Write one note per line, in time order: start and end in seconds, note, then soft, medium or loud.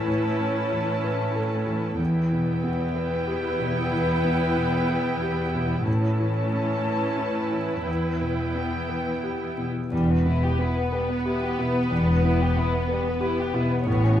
0.00 0.08 A2 soft
0.00 1.95 A2 soft
0.00 0.28 E3 soft
0.00 0.10 C#4 soft
0.00 1.96 C#4 soft
0.00 1.96 E4 soft
0.00 0.10 A4 soft
0.00 0.11 B4 soft
0.00 1.95 B4 soft
0.00 1.95 A5 soft
0.08 1.95 A2 soft
0.41 0.91 C#4 soft
0.72 1.23 E3 soft
1.04 1.55 B4 soft
1.36 1.86 A4 soft
1.67 1.99 E3 soft
1.99 3.87 E2 soft
1.99 5.83 E2 soft
1.99 5.83 B3 medium
1.99 5.83 E4 medium
1.99 5.84 B4 medium
1.99 5.83 G5 medium
2.32 2.82 B2 soft
2.64 3.15 B3 soft
2.95 3.46 B4 soft
3.27 3.79 G4 soft
3.59 4.11 B2 soft
3.92 5.83 E2 soft
4.24 4.76 B3 soft
4.57 5.08 B2 soft
4.89 5.41 B4 soft
5.22 5.74 G4 soft
5.55 5.87 B2 soft
5.86 7.83 A2 soft
5.86 7.83 C#4 soft
5.86 9.67 E4 soft
5.86 9.67 B4 soft
5.86 7.83 A5 medium
6.20 6.72 E3 soft
6.52 7.05 C#4 soft
6.85 7.39 B4 soft
7.18 7.73 E4 soft
7.52 7.87 E3 soft
7.87 9.87 E2 soft
7.87 9.71 E2 soft
7.87 9.67 B3 soft
7.87 9.67 G5 soft
8.21 8.76 B2 soft
8.55 9.10 B3 soft
8.89 9.44 B4 soft
9.23 9.78 G4 soft
9.57 9.92 B2 soft
9.90 10.47 E1 soft
9.90 10.48 E2 soft
9.90 11.87 E2 soft
9.90 10.07 G3 soft
9.90 13.82 B3 soft
9.90 13.83 B4 soft
10.10 10.26 B3 soft
10.26 10.79 B2 soft
10.26 10.43 E4 soft
10.44 10.60 G4 soft
10.59 11.12 B3 soft
10.59 10.76 E4 soft
10.77 10.93 B3 soft
10.92 11.09 G3 soft
10.92 11.45 B4 soft
11.10 11.26 B3 soft
11.25 11.43 E4 soft
11.25 11.78 G4 soft
11.43 11.59 G4 soft
11.58 12.10 B2 soft
11.58 11.75 E4 soft
11.75 11.91 B3 soft
11.90 12.45 E1 soft
11.90 12.45 E2 soft
11.90 13.83 E2 soft
11.90 12.06 G3 soft
12.08 12.24 B3 soft
12.24 12.76 B3 soft
12.24 12.41 E4 soft
12.41 12.57 G4 soft
12.57 13.09 B2 soft
12.57 12.73 E4 soft
12.74 12.90 B3 soft
12.88 13.06 G3 soft
12.88 13.40 B4 soft
13.08 13.23 B3 soft
13.21 13.38 E4 soft
13.21 13.73 G4 soft
13.39 13.55 G4 soft
13.54 13.86 B2 soft
13.54 13.71 E4 soft
13.71 13.87 B3 soft
13.86 14.20 A1 medium
13.86 14.20 A2 medium
13.86 14.20 B3 soft
13.86 14.02 B3 medium
13.86 14.20 C#5 medium
14.04 14.20 C#4 soft